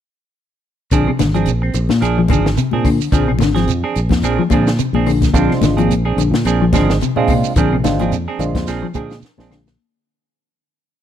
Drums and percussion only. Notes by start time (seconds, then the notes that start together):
0.91 kick, closed hi-hat, shekere
1.08 claves
1.19 snare, closed hi-hat, high conga, shekere
1.34 closed hi-hat, shekere
1.46 closed hi-hat, shekere
1.63 claves
1.74 closed hi-hat, shekere
1.89 snare, high conga, shekere
2.02 closed hi-hat, claves, shekere
2.28 kick, closed hi-hat, high conga, claves
2.33 shekere
2.46 snare, shekere
2.57 closed hi-hat, shekere
2.71 high conga
2.85 kick, open hi-hat, claves, shekere
3.01 shekere
3.12 kick, closed hi-hat, shekere
3.29 claves
3.39 snare, closed hi-hat, high conga, shekere
3.56 snare, closed hi-hat, shekere
3.68 closed hi-hat, shekere
3.84 claves
3.96 closed hi-hat, shekere
4.09 kick, snare, closed hi-hat, high conga, shekere
4.23 closed hi-hat, claves, shekere
4.50 kick, closed hi-hat, high conga, claves, shekere
4.67 snare, shekere
4.79 closed hi-hat, shekere
4.94 high conga
5.06 open hi-hat, claves, shekere
5.21 kick, snare, closed hi-hat, high conga, shekere
5.34 kick, closed hi-hat, shekere
5.50 snare, claves
5.62 snare, closed hi-hat, high conga, shekere
5.77 closed hi-hat, high conga, shekere
5.91 closed hi-hat, shekere
6.05 claves
6.18 closed hi-hat, shekere
6.34 snare, high conga, shekere
6.45 closed hi-hat, claves, shekere
6.73 kick, snare, closed hi-hat, high conga, claves, shekere
6.90 snare, shekere
7.01 closed hi-hat, shekere
7.16 high conga
7.27 kick, open hi-hat, claves, shekere
7.44 shekere
7.56 kick, closed hi-hat, shekere
7.73 claves
7.84 snare, closed hi-hat, high conga, shekere
7.99 closed hi-hat, high conga, shekere
8.12 closed hi-hat, shekere
8.28 claves
8.39 closed hi-hat, shekere
8.55 kick, snare, closed hi-hat, high conga, shekere
8.67 snare, closed hi-hat, claves, shekere
8.94 kick, closed hi-hat, high conga, claves, shekere
9.10 snare, shekere
9.22 snare, shekere
9.38 snare, high conga
9.51 snare, high conga, claves, shekere
9.66 snare, high conga, shekere